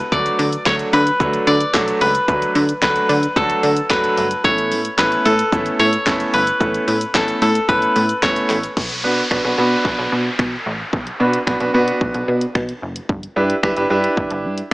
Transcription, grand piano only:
0.12 0.46 F#3 medium
0.12 0.46 A3 medium
0.12 0.46 D4 medium
0.12 0.46 F#4 medium
0.12 0.46 A4 medium
0.66 1.00 F#3 medium
0.66 1.00 A3 medium
0.66 1.00 D4 medium
0.66 1.00 F#4 medium
0.66 1.00 A4 medium
1.20 1.54 F#3 medium
1.20 1.54 A3 medium
1.20 1.54 D4 medium
1.20 1.54 F#4 medium
1.20 1.54 A4 medium
1.74 2.08 F#3 medium
1.74 2.08 A3 medium
1.74 2.08 D4 medium
1.74 2.08 F#4 medium
1.74 2.08 A4 loud
2.28 2.62 F#3 medium
2.28 2.62 A3 medium
2.28 2.62 D4 medium
2.28 2.62 F#4 medium
2.28 2.62 B4 medium
2.82 3.16 F#3 medium
2.82 3.16 A3 medium
2.82 3.16 D4 medium
2.82 3.16 F#4 medium
2.82 3.16 A4 medium
3.36 3.70 F#3 medium
3.36 3.70 A3 medium
3.36 3.70 D4 medium
3.36 3.70 F#4 medium
3.36 3.70 A4 medium
3.90 4.24 F#3 medium
3.90 4.24 A3 medium
3.90 4.24 D4 medium
3.90 4.24 F#4 medium
3.90 4.24 A4 loud
4.44 4.78 A3 medium
4.44 4.78 B3 medium
4.44 4.78 C#4 medium
4.44 4.78 E4 medium
4.44 4.78 A4 medium
4.98 5.32 A3 medium
4.98 5.32 B3 medium
4.98 5.32 C#4 medium
4.98 5.32 E4 medium
4.98 5.32 A4 medium
5.52 5.86 A3 medium
5.52 5.86 B3 medium
5.52 5.86 C#4 medium
5.52 5.86 E4 medium
5.52 5.86 A4 medium
6.06 6.40 A3 medium
6.06 6.40 B3 medium
6.06 6.40 C#4 medium
6.06 6.40 E4 medium
6.06 6.40 A4 loud
6.60 6.94 A3 medium
6.60 6.94 B3 medium
6.60 6.94 C#4 medium
6.60 6.94 E4 medium
6.60 6.94 A4 medium
7.14 7.48 A3 medium
7.14 7.48 B3 medium
7.14 7.48 C#4 medium
7.14 7.48 E4 medium
7.14 7.48 A4 medium
7.68 8.02 A3 medium
7.68 8.02 B3 medium
7.68 8.02 C#4 medium
7.68 8.02 E4 medium
7.68 8.03 A4 medium
8.22 8.56 A3 loud
8.22 8.56 B3 medium
8.22 8.56 C#4 medium
8.22 8.57 E4 medium
8.22 8.57 A4 loud
9.04 9.21 B3 medium
9.04 9.21 D4 medium
9.04 9.21 F#4 medium
9.04 9.21 B4 medium
9.31 9.39 B3 medium
9.31 9.39 D4 medium
9.31 9.39 F#4 medium
9.31 9.39 B4 loud
9.44 9.53 B3 medium
9.44 9.53 D4 medium
9.44 9.53 F#4 medium
9.44 9.53 B4 medium
9.58 10.25 B3 loud
9.58 10.25 D4 medium
9.58 10.25 F#4 medium
9.58 10.26 B4 loud
11.20 11.37 B3 medium
11.20 11.37 D4 medium
11.20 11.37 F#4 medium
11.20 11.37 B4 medium
11.47 11.55 B3 medium
11.47 11.55 D4 medium
11.47 11.56 F#4 medium
11.47 11.56 B4 loud
11.60 11.69 B3 medium
11.60 11.69 D4 medium
11.60 11.69 F#4 medium
11.60 11.69 B4 loud
11.74 12.41 B3 loud
11.74 12.42 D4 medium
11.74 12.42 F#4 medium
11.74 12.42 B4 loud
13.36 13.53 D4 medium
13.36 13.53 E4 medium
13.36 13.53 G4 medium
13.36 13.53 B4 loud
13.63 13.72 D4 medium
13.63 13.72 E4 medium
13.63 13.72 G4 medium
13.63 13.72 B4 loud
13.76 13.85 D4 medium
13.76 13.85 E4 medium
13.76 13.85 G4 medium
13.76 13.85 B4 loud
13.90 14.58 D4 loud
13.90 14.58 E4 medium
13.90 14.58 G4 medium
13.90 14.58 B4 loud

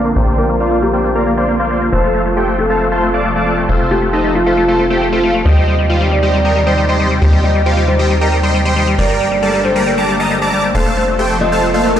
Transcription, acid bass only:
0.05 0.12 A#3 medium
0.16 0.23 A#3 medium
0.27 0.35 A#3 medium
0.38 0.46 A#3 medium
0.49 0.57 A#3 medium
0.60 0.68 A#3 medium
0.71 0.79 A#3 medium
0.82 0.90 A#3 medium
0.93 1.01 A#3 medium
1.04 1.12 A#3 medium
1.15 1.23 A#3 medium
1.26 1.34 A#3 medium
1.37 1.45 A#3 medium
1.48 1.56 A#3 medium
1.59 1.67 A#3 medium
1.71 1.78 A#3 medium
1.81 1.89 A#3 medium
1.93 2.00 A3 medium
2.04 2.11 A3 medium
2.15 2.22 A3 medium
2.26 2.33 A3 medium
2.37 2.44 A3 medium
2.48 2.55 A3 medium
2.59 2.66 A3 medium
2.70 2.77 A3 medium
2.81 2.88 A3 medium
2.92 2.99 A3 medium
3.03 3.10 A3 medium
3.14 3.21 A3 medium
3.25 3.32 A3 medium
3.36 3.43 A3 medium
3.47 3.54 A3 medium
3.58 3.65 A3 medium
3.69 3.76 A3 medium
3.80 3.87 A3 medium
3.91 3.98 A3 medium
4.02 4.09 A3 medium
4.13 4.21 A3 medium
4.24 4.32 A3 medium
4.35 4.43 A3 medium
4.46 4.54 A3 medium
4.57 4.65 A3 medium
4.68 4.76 A3 medium
4.79 4.87 A3 medium
4.90 4.98 A3 medium
5.01 5.09 A3 medium
5.12 5.20 A3 medium
5.23 5.31 A3 medium
5.34 5.42 A3 medium
5.45 5.53 G3 medium
5.56 5.64 G3 medium
5.67 5.75 G3 medium
5.78 5.86 G3 medium
5.89 5.97 G3 medium
6.00 6.08 G3 medium
6.12 6.19 G3 medium
6.23 6.30 G3 medium
6.34 6.41 G3 medium
6.45 6.52 G3 medium
6.56 6.63 G3 medium
6.67 6.74 G3 medium
6.78 6.85 G3 medium
6.89 6.96 G3 medium
7.00 7.07 G3 medium
7.11 7.18 G3 medium
7.22 7.29 G3 medium
7.33 7.40 G3 medium
7.44 7.51 G3 medium
7.55 7.62 G3 medium
7.66 7.73 G3 medium
7.77 7.85 G3 medium
7.88 7.96 G3 medium
7.99 8.07 G3 medium
8.10 8.18 G3 medium
8.21 8.29 G3 medium
8.32 8.40 G3 medium
8.43 8.51 G3 medium
8.54 8.62 G3 medium
8.65 8.73 G3 medium
8.76 8.84 G3 medium
8.87 8.95 G3 medium
8.98 9.06 G3 medium
9.09 9.17 G3 medium
9.20 9.28 G3 medium
9.31 9.39 G3 medium
9.42 9.50 G3 medium
9.54 9.61 G3 medium
9.65 9.72 G3 medium
9.76 9.83 G3 medium
9.87 9.94 G3 medium
9.98 10.05 G3 medium
10.09 10.16 G3 medium
10.20 10.27 G3 medium
10.31 10.38 G3 medium
10.42 10.49 G3 medium
10.53 10.60 G3 medium
10.64 10.71 G3 medium
10.75 10.82 A3 medium
10.86 10.93 A3 medium
10.97 11.04 A3 medium
11.08 11.15 A3 medium
11.19 11.26 A3 medium
11.30 11.37 A3 medium
11.41 11.48 A3 medium
11.52 11.59 A3 medium
11.63 11.71 A3 medium
11.74 11.82 A3 medium
11.85 11.93 A3 medium
11.96 12.00 A3 medium

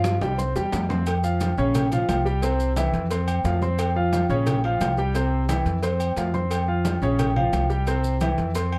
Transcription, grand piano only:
0.00 0.16 F3 medium
0.00 0.16 F4 medium
0.00 0.16 F5 medium
0.21 0.35 G3 medium
0.21 0.35 G4 medium
0.21 0.36 G5 medium
0.38 0.52 C4 medium
0.38 0.52 C5 medium
0.38 0.53 C6 medium
0.56 0.84 G3 medium
0.56 0.84 G4 medium
0.56 0.84 G5 medium
0.89 1.03 C4 medium
0.89 1.03 C5 medium
0.89 1.04 C6 medium
1.23 1.51 F3 medium
1.23 1.52 F4 medium
1.23 1.52 F5 medium
1.58 1.86 C#3 medium
1.58 1.86 C#4 medium
1.58 1.86 C#5 medium
1.92 2.20 F3 medium
1.92 2.20 F4 medium
1.92 2.20 F5 medium
2.25 2.39 G3 medium
2.25 2.40 G4 medium
2.25 2.40 G5 medium
2.43 2.71 C3 medium
2.43 2.71 C4 medium
2.43 2.71 C5 medium
2.77 3.05 E3 medium
2.77 3.05 E4 medium
2.77 3.05 E5 medium
3.11 3.39 C4 medium
3.11 3.39 C5 medium
3.11 3.39 C6 medium
3.45 3.58 F3 medium
3.45 3.59 F4 medium
3.45 3.59 F5 medium
3.62 3.90 C4 medium
3.62 3.90 C5 medium
3.62 3.90 C6 medium
3.96 4.23 F3 medium
3.96 4.24 F4 medium
3.96 4.24 F5 medium
4.30 4.57 C#3 medium
4.30 4.58 C#4 medium
4.30 4.58 C#5 loud
4.64 4.92 F3 medium
4.64 4.92 F4 medium
4.64 4.92 F5 medium
4.98 5.12 G3 medium
4.98 5.12 G4 medium
4.98 5.12 G5 medium
5.15 5.43 C3 medium
5.15 5.43 C4 medium
5.15 5.43 C5 medium
5.50 5.77 E3 medium
5.50 5.77 E4 medium
5.50 5.77 E5 medium
5.83 6.11 C4 medium
5.83 6.11 C5 medium
5.83 6.11 C6 medium
6.17 6.31 F3 medium
6.17 6.31 F4 medium
6.17 6.31 F5 medium
6.34 6.62 C4 medium
6.34 6.62 C5 medium
6.34 6.62 C6 medium
6.68 6.96 F3 medium
6.68 6.96 F4 medium
6.68 6.96 F5 medium
7.02 7.30 C#3 loud
7.02 7.30 C#4 medium
7.02 7.31 C#5 medium
7.36 7.64 F3 medium
7.36 7.64 F4 medium
7.36 7.64 F5 medium
7.70 7.84 G3 medium
7.70 7.84 G4 medium
7.70 7.84 G5 medium
7.87 8.15 C3 medium
7.87 8.15 C4 medium
7.87 8.16 C5 medium
8.21 8.49 E3 medium
8.21 8.50 E4 medium
8.21 8.50 E5 medium
8.55 8.79 C4 medium
8.55 8.79 C5 medium
8.55 8.79 C6 medium

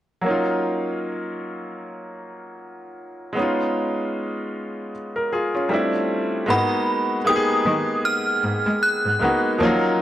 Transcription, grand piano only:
0.21 3.31 F#3 medium
0.21 3.32 A#3 medium
0.26 3.33 C#4 medium
0.26 3.34 D#4 medium
0.31 3.36 F4 medium
3.33 5.65 G#3 medium
3.33 5.66 B3 medium
3.37 4.90 C#4 medium
3.37 4.91 D#4 medium
3.42 4.92 F4 medium
5.16 5.31 A#4 medium
5.32 5.53 F4 medium
5.32 5.54 G#4 medium
5.54 5.92 C#4 soft
5.54 5.91 F4 medium
5.69 6.48 G3 medium
5.69 6.48 A3 medium
5.69 6.49 C4 medium
5.69 6.50 D4 medium
5.74 6.50 E4 medium
6.46 7.16 G#3 medium
6.46 7.16 A#3 medium
6.46 7.17 B3 medium
6.46 7.17 D#4 medium
6.51 7.18 F#4 medium
7.25 8.61 G#3 medium
7.25 8.62 A#3 medium
7.25 8.62 B3 medium
7.25 8.63 D#4 medium
7.29 7.35 G4 medium
7.36 8.67 G#4 medium
9.19 9.55 G#3 medium
9.19 9.55 A#3 medium
9.19 9.56 B3 medium
9.19 9.56 D#4 medium
9.24 9.57 F#4 medium
9.58 9.67 F3 medium
9.58 10.02 A#3 medium
9.58 10.02 C#4 medium
9.58 10.02 D#4 medium
9.63 10.02 F#3 medium
9.63 10.02 F4 medium

